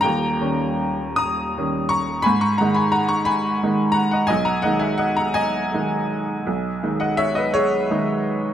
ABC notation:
X:1
M:12/8
L:1/16
Q:3/8=57
K:D#phr
V:1 name="Upright piano"
[=ga]6 [ad']4 [ac']2 [^gb] [ac'] [fa] [gb] [fa] [ac'] [gb]4 [fa] [df] | [dg] [fa] [df] [eg] [df] [fa] [dg]8- [dg] [df] [ce] [Bd] [Gc]6 |]
V:2 name="Upright piano" clef=bass
[D,,,D,,]2 [D,=G,C]6 [D,G,C]4 ^G,,2 [D,^G,D]6 [D,G,D]4 | B,,,2 [D,G,D]6 [D,G,D]4 B,,,2 [D,G,D]6 [D,G,D]4 |]